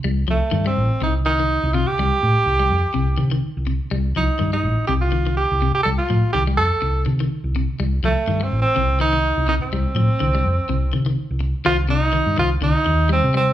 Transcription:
0.04 fingered electric bass C2, clean electric guitar G3
0.28 fingered electric bass C2, clean electric guitar F3, tenor saxophone A3
0.51 fingered electric bass G2, clean electric guitar D#3
0.66 clean electric guitar G3, tenor saxophone C4
0.77 fingered electric bass A1
1.01 fingered electric bass C2, clean electric guitar C3, tenor saxophone D#4
1.25 clean electric guitar D#3, tenor saxophone D#4
1.40 clean electric guitar D#3
1.63 fingered electric bass C2
1.74 clean electric guitar C3, tenor saxophone F4
1.87 tenor saxophone G4, muted fingered electric bass stroke
1.99 fingered electric bass C2, clean electric guitar G3
2.23 fingered electric bass A2
2.36 muted fingered electric bass stroke
2.46 fingered electric bass C2
2.59 clean electric guitar G3
2.70 fingered electric bass F2
2.94 fingered electric bass C2, clean electric guitar C3
3.18 fingered electric bass C3, clean electric guitar D#3
3.31 clean electric guitar D#3
3.57 fingered electric bass C2
3.67 clean electric guitar C3
3.91 fingered electric bass C2, clean electric guitar G3
4.16 fingered electric bass C2, clean electric guitar F3, tenor saxophone D#4
4.39 fingered electric bass G2, clean electric guitar D#3
4.53 clean electric guitar G3, tenor saxophone D#4
4.63 fingered electric bass A1
4.87 fingered electric bass C2, clean electric guitar C3, tenor saxophone G4
5.01 tenor saxophone F4
5.12 clean electric guitar D#3
5.27 clean electric guitar D#3
5.37 tenor saxophone G4
5.51 fingered electric bass C2
5.62 clean electric guitar C3
5.75 tenor saxophone G4
5.83 fingered electric bass C2, clean electric guitar G3, tenor saxophone A4
5.98 tenor saxophone F4
6.10 fingered electric bass A2, clean electric guitar F3
6.24 muted fingered electric bass stroke
6.33 fingered electric bass C2, clean electric guitar D#3, tenor saxophone G4
6.47 clean electric guitar G3
6.57 fingered electric bass F2, tenor saxophone A4
6.82 fingered electric bass C2, muted clean electric guitar stroke
7.06 fingered electric bass C3, clean electric guitar D#3
7.20 clean electric guitar D#3
7.44 fingered electric bass C2
7.56 clean electric guitar C3
7.80 fingered electric bass C2, clean electric guitar G3
8.03 fingered electric bass C2, clean electric guitar F3, tenor saxophone A3
8.27 fingered electric bass G2, clean electric guitar D#3
8.41 tenor saxophone C4, muted clean electric guitar stroke
8.51 fingered electric bass A1
8.62 tenor saxophone C4
8.76 fingered electric bass C2, clean electric guitar C3
9.00 clean electric guitar D#3, tenor saxophone D#4
9.13 clean electric guitar D#3
9.38 fingered electric bass C2
9.48 clean electric guitar C3, tenor saxophone D#4
9.62 tenor saxophone C4
9.72 fingered electric bass C2, clean electric guitar G3
9.95 fingered electric bass A2, clean electric guitar F3
10.10 muted fingered electric bass stroke
10.20 fingered electric bass C2, clean electric guitar D3
10.35 clean electric guitar G3
10.45 fingered electric bass F2
10.69 fingered electric bass C2, clean electric guitar C3
10.93 fingered electric bass C3, clean electric guitar D#3
11.06 clean electric guitar D#3
11.31 fingered electric bass C2
11.40 muted clean electric guitar stroke
11.65 fingered electric bass C2, clean electric guitar D#3, tenor saxophone F4
11.89 clean electric guitar C3, tenor saxophone D#4
12.13 clean electric guitar D#3
12.27 fingered electric bass G2
12.37 fingered electric bass C2, clean electric guitar D#3, tenor saxophone F4
12.61 fingered electric bass C2, clean electric guitar D3, tenor saxophone D#4
12.86 fingered electric bass D#2, muted clean electric guitar stroke
13.09 clean electric guitar G3, tenor saxophone C4
13.24 fingered electric bass C3
13.34 clean electric guitar G3, tenor saxophone C4

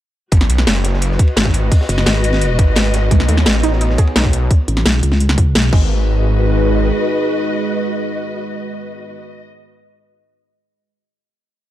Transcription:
0.32 detuned saw bass G#1, string section F#4, kick, closed hi-hat, ride
0.41 snare
0.50 detuned saw bass B1, closed hi-hat, ride
0.58 snare
0.67 detuned saw bass F#1, snare, closed hi-hat, ride
0.84 string section B4, snare, closed hi-hat, ride
0.93 snare
1.02 closed hi-hat, ride
1.11 snare
1.19 kick, closed hi-hat, ride
1.24 string section D#5, ride
1.37 detuned saw bass G#1, snare, closed hi-hat, ride
1.45 kick, ride
1.54 closed hi-hat, ride
1.71 kick, closed hi-hat, open hi-hat
1.81 snare
1.89 wobble bass F#1, closed hi-hat, ride
1.98 snare
2.06 wobble bass G#1, snare, closed hi-hat, ride
2.24 closed hi-hat, ride
2.33 snare, ride
2.41 closed hi-hat, ride
2.59 detuned saw bass G#1, kick, closed hi-hat, ride
2.75 snare, closed hi-hat, ride
2.85 ride
2.94 detuned saw bass G#1, snare, closed hi-hat, ride
3.11 detuned saw bass B1, synth arpeggio sound G#3, analog synth pad B3 F#4 C#5 D#5, kick, closed hi-hat, ride
3.20 snare
3.28 detuned saw bass D#2, synth arpeggio sound A3, closed hi-hat, ride
3.37 snare
3.46 detuned saw bass A1, snare, closed hi-hat, ride
3.63 synth arpeggio sound D#4, snare, closed hi-hat, ride
3.72 snare
3.81 synth arpeggio sound D#4, closed hi-hat, ride
3.90 snare
3.98 synth arpeggio sound G#4, kick, closed hi-hat, ride
4.07 ride
4.16 detuned saw bass B1, synth arpeggio sound D#4, snare, closed hi-hat, ride
4.24 kick, ride
4.33 closed hi-hat, ride
4.51 kick, closed hi-hat
4.68 wobble bass A1, closed hi-hat
4.77 snare
4.86 wobble bass B1, snare, closed hi-hat
5.03 wobble bass C#2, closed hi-hat
5.12 snare
5.20 closed hi-hat
5.29 snare
5.38 kick, closed hi-hat
5.55 wobble bass B1, snare, closed hi-hat
5.73 detuned saw bass G#1, analog synth pad G#3 D#4 G#4 B4, synth arpeggio sound G#3, string section F#4, kick, crash
5.78 string section B4
6.01 string section D#5

